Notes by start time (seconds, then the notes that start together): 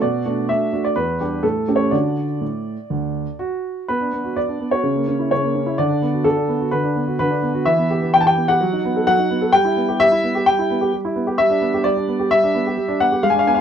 0.02 B2 D5
0.25 A3 D4 F#4
0.49 A3 D4 F#4 E5
0.73 A3 D4 F#4
0.84 D5
0.96 E2 B4
1.20 G3 D4 G4
1.43 A2 A4
1.68 A3 C#4 G4
1.76 C#5
1.91 D3 D4 F#4 D5
2.41 A2
2.90 D2
3.39 F#4
3.88 B3 B4
4.01 D4
4.13 B3
4.24 F#4
4.36 B3 D5
4.48 D4
4.60 B3
4.71 F#4 C#5
4.83 C#3
4.96 A#3
5.08 C#4
5.19 E4
5.31 C#3 C#5
5.43 A#3
5.55 C#4
5.66 E4
5.78 D3 D5
5.90 D4
6.02 B3
6.13 F#4
6.24 D3 A4
6.37 D4
6.48 B3
6.61 F#4
6.71 D3 B4
6.84 D4
6.96 B3
7.07 F#4
7.19 D3 B4
7.31 D4
7.42 B3
7.54 F#4
7.65 E3 E5
7.78 B3
7.90 G4
8.02 B3
8.14 E3 G5
8.21 A5
8.26 G4 G5
8.36 B3
8.48 G4 F#5
8.61 F#3
8.73 D#4
8.85 B3
8.96 A4
9.07 F#3 F#5
9.19 D#4
9.30 B3
9.41 A4
9.53 G3 G5
9.65 E4
9.76 B3
9.88 G4
10.00 G3 E5
10.12 E4
10.23 B3
10.35 G4
10.46 G3 G5
10.59 E4
10.70 B3
10.81 G4
10.93 G3
11.05 E4
11.16 B3
11.27 G4
11.38 G3 E5
11.50 D4
11.61 B3
11.74 G4
11.84 G3 D5
11.97 D4
12.08 B3
12.19 G4
12.31 G3 E5
12.43 D4
12.55 B3
12.67 G4
12.77 G3
12.88 D4
13.00 B3 F#5
13.12 G4
13.23 G#3 F5
13.30 G#5
13.34 D4
13.39 F5
13.47 B3 G#5
13.55 F5